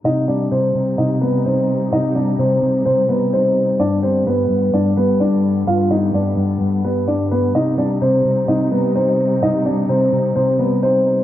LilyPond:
<<
  \new Staff \with { instrumentName = "Grand piano" } { \time 4/4 \key c \minor \tempo 4 = 128 <ees' ees''>8 <d' d''>8 <c' c''>4 <ees' ees''>8 <b b'>8 <c' c''>4 | <ees' ees''>8 <d' d''>8 <c' c''>4 <c' c''>8 <b b'>8 <c' c''>4 | <d' d''>8 <c' c''>8 <b b'>4 <d' d''>8 <b b'>8 <d' d''>4 | <f' f''>8 <ees' ees''>8 <d' d''>4. <b b'>8 <d' d''>8 <b b'>8 |
<ees' ees''>8 <d' d''>8 <c' c''>4 <ees' ees''>8 <b b'>8 <c' c''>4 | <ees' ees''>8 <d' d''>8 <c' c''>4 <c' c''>8 <b b'>8 <c' c''>4 | }
  \new Staff \with { instrumentName = "String section" } { \clef bass \time 4/4 \key c \minor <c g ees'>1~ | <c g ees'>1 | <g, d b>1~ | <g, d b>1 |
<c g ees'>1~ | <c g ees'>1 | }
  \new Staff \with { instrumentName = "Clean electric guitar" } { \clef bass \time 4/4 \key c \minor c8 g8 c8 c8 c8 g8 ees'4 | c8 g8 c8 c8 c8 g8 ees'4 | g,8 g8 g,8 g,8 g,8 g8 d'4 | g,8 g8 g,8 g,8 g,8 g8 d'4 |
c8 g8 c8 c8 c8 g8 ees'4 | c8 g8 c8 c8 c8 g8 ees'4 | }
>>